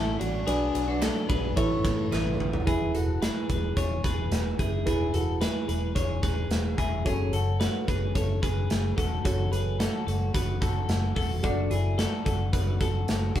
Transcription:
Already playing: fingered electric bass A1, string section E3 A3 C#4, reed electric piano C#4 E4 A4 C#5, clean electric guitar E4 A4
0.19 fingered electric bass A1, clean electric guitar D4 F#4, ride
0.46 fingered electric bass B1, string section D3 F#3 B3, reed electric piano D4 F#4 B4 D5, clean electric guitar D4 G#4, ride
0.75 fingered electric bass B1, ride
0.88 clean electric guitar D4 F#4
1.01 clean electric guitar F#4 A4, snare, clap, ride
1.29 fingered electric bass B1, clean electric guitar G#4 B4, kick, ride
1.56 fingered electric bass A1, string section E3 A3, reed electric piano E4 A4 B4 E5, clean electric guitar A4 C#5, kick, ride
1.85 fingered electric bass A2, kick, snare, clap, ride
2.12 fingered electric bass A1, clean electric guitar E4 B4, snare, clap
2.27 high tom
2.40 fingered electric bass A1, mid tom
2.53 floor tom
2.66 fingered electric bass E1, reed electric piano E4 G#4 B4, clean electric guitar E4 G#4, kick, closed hi-hat
2.94 fingered electric bass E1, clean electric guitar F#4 A4, closed hi-hat
3.22 clean electric guitar G#4 B4, snare, closed hi-hat
3.49 fingered electric bass E1, clean electric guitar G#4 B4, kick, closed hi-hat
3.77 fingered electric bass E1, clean electric guitar G#4 C#5, kick, closed hi-hat
4.04 fingered electric bass E1, clean electric guitar G#4 B4, kick, snare, closed hi-hat
4.31 fingered electric bass E1, snare, closed hi-hat
4.59 fingered electric bass F#1, clean electric guitar E4 G#4, kick, closed hi-hat
4.86 fingered electric bass E1, reed electric piano E4 G#4 B4, clean electric guitar E4 G#4, kick, closed hi-hat
5.13 fingered electric bass E1, clean electric guitar F#4 A4, closed hi-hat
5.41 clean electric guitar G#4 B4, snare, closed hi-hat
5.68 fingered electric bass E1, clean electric guitar G#4 B4, closed hi-hat
5.95 fingered electric bass E1, clean electric guitar G#4 C#5, kick, closed hi-hat
6.23 fingered electric bass E1, clean electric guitar G#4 B4, kick, snare, closed hi-hat
6.50 fingered electric bass E1, snare, closed hi-hat
6.78 fingered electric bass E1, clean electric guitar E4 G#4, kick, closed hi-hat
7.05 fingered electric bass F#1, clean electric guitar C#4 G#4, reed electric piano F#4 A4 C#5, kick, closed hi-hat
7.33 fingered electric bass F#1, clean electric guitar F#4 A4, closed hi-hat
7.60 clean electric guitar F#4 B4, snare, closed hi-hat
7.88 fingered electric bass F#1, clean electric guitar G#4 B4, kick, closed hi-hat
8.15 fingered electric bass F#1, clean electric guitar A4 C#5, kick, closed hi-hat
8.42 fingered electric bass F#1, clean electric guitar G#4 B4, kick, closed hi-hat
8.70 fingered electric bass F#1, snare, closed hi-hat
8.97 fingered electric bass E1, clean electric guitar F#4 A4, kick, closed hi-hat
9.25 fingered electric bass F#1, reed electric piano F#4 A4 C#5, clean electric guitar F#4 A4, kick, closed hi-hat
9.51 fingered electric bass F#1, clean electric guitar G#4 B4, closed hi-hat
9.79 clean electric guitar F#4 A4, snare, closed hi-hat
10.07 fingered electric bass F#1, clean electric guitar F#4 A4, closed hi-hat
10.34 fingered electric bass F#1, clean electric guitar F#4 B4, kick, closed hi-hat
10.62 fingered electric bass F#1, clean electric guitar F#4 A4, kick, closed hi-hat
10.89 fingered electric bass F#1, snare, closed hi-hat
11.16 fingered electric bass E1, clean electric guitar F#4 A4, kick, open hi-hat
11.43 fingered electric bass F#1, clean electric guitar D4 F#4, reed electric piano F#4 A4 D5, kick, closed hi-hat
11.71 fingered electric bass F#1, clean electric guitar E4 G#4, closed hi-hat
11.98 clean electric guitar F#4 A4, snare, closed hi-hat
12.25 fingered electric bass F#1, clean electric guitar F#4 A4, kick, closed hi-hat
12.53 fingered electric bass F#1, clean electric guitar F#4 B4, kick, closed hi-hat
12.81 fingered electric bass F#1, clean electric guitar F#4 A4, kick, closed hi-hat
13.08 fingered electric bass F#1, snare, closed hi-hat
13.36 fingered electric bass E1, clean electric guitar D4 F#4, kick, closed hi-hat

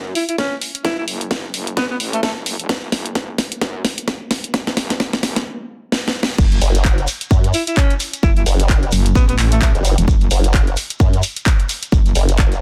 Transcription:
Already playing: wobble bass F#2
0.15 alto saxophone E4, open hi-hat
0.29 alto saxophone E4, closed hi-hat
0.38 alto saxophone C#4, kick, snare, closed hi-hat
0.62 open hi-hat
0.75 closed hi-hat
0.85 wobble bass F#1, alto saxophone E4, kick, snare, closed hi-hat
0.98 alto saxophone E4
1.08 wobble bass F#1, open hi-hat
1.21 closed hi-hat
1.31 kick, snare, closed hi-hat
1.54 wobble bass F#1, open hi-hat
1.67 closed hi-hat
1.77 wobble bass A1, alto saxophone B3, kick, snare, closed hi-hat
1.90 alto saxophone B3
2.00 wobble bass A1, open hi-hat
2.13 alto saxophone A3, closed hi-hat
2.23 alto saxophone A3, kick, snare, closed hi-hat
2.36 wobble bass F#1
2.46 open hi-hat
2.59 wobble bass E1, closed hi-hat
2.69 wobble bass F#1, kick, snare, closed hi-hat
2.92 wobble bass F#1, snare, open hi-hat
3.06 closed hi-hat
3.15 kick, snare, closed hi-hat
3.38 snare, open hi-hat
3.52 closed hi-hat
3.61 wobble bass F#2, kick, snare, closed hi-hat
3.85 snare, open hi-hat
3.98 closed hi-hat
4.08 kick, snare, closed hi-hat
4.31 snare, open hi-hat
4.44 closed hi-hat
4.54 wobble bass F#1, kick, snare, closed hi-hat
4.67 snare
4.77 wobble bass F#1, snare, open hi-hat
4.90 snare, closed hi-hat
5.00 kick, snare, closed hi-hat
5.13 snare
5.23 wobble bass F#1, snare, open hi-hat
5.36 snare, closed hi-hat
5.92 snare
6.08 snare
6.23 snare
6.38 wobble bass F#1, kick, crash, shekere
6.52 closed hi-hat, shekere
6.62 wobble bass F#1, open hi-hat, shekere
6.75 closed hi-hat, shekere
6.85 kick, clap, shekere
6.98 closed hi-hat, shekere
7.08 open hi-hat, shekere
7.21 closed hi-hat, shekere
7.31 wobble bass F#2, kick, shekere
7.44 closed hi-hat, shekere
7.54 alto saxophone E4, open hi-hat, shekere
7.67 alto saxophone E4, closed hi-hat, shekere
7.77 alto saxophone C#4, kick, clap, shekere
7.90 closed hi-hat, shekere
8.00 open hi-hat, shekere
8.13 closed hi-hat, shekere
8.23 wobble bass F#1, alto saxophone E4, kick, shekere
8.36 alto saxophone E4, closed hi-hat, shekere
8.46 wobble bass F#1, open hi-hat, shekere
8.60 closed hi-hat, shekere
8.69 kick, clap, shekere
8.82 closed hi-hat, shekere
8.92 wobble bass F#1, open hi-hat, shekere
9.06 closed hi-hat, shekere
9.15 wobble bass A1, alto saxophone B3, kick, shekere
9.28 alto saxophone B3, closed hi-hat, shekere
9.38 wobble bass A1, clap, open hi-hat, shekere
9.52 alto saxophone A3, closed hi-hat, shekere
9.62 alto saxophone A3, kick, clap, shekere
9.75 wobble bass F#1, closed hi-hat, shekere
9.85 open hi-hat, shekere
9.98 wobble bass E1, closed hi-hat, shekere
10.08 wobble bass F#1, kick, shekere
10.21 closed hi-hat, shekere
10.31 wobble bass F#1, open hi-hat, shekere
10.43 closed hi-hat, shekere
10.54 kick, clap, shekere
10.67 closed hi-hat, shekere
10.77 open hi-hat, shekere
10.90 closed hi-hat, shekere
10.99 wobble bass F#2, kick, shekere
11.13 closed hi-hat, shekere
11.23 open hi-hat, shekere
11.36 closed hi-hat, shekere
11.46 kick, clap, shekere
11.59 closed hi-hat, shekere
11.69 open hi-hat, shekere
11.82 closed hi-hat, shekere
11.92 wobble bass F#1, kick, shekere
12.06 closed hi-hat, shekere
12.15 wobble bass F#1, open hi-hat, shekere
12.29 closed hi-hat, shekere
12.38 kick, clap, shekere
12.52 closed hi-hat, shekere

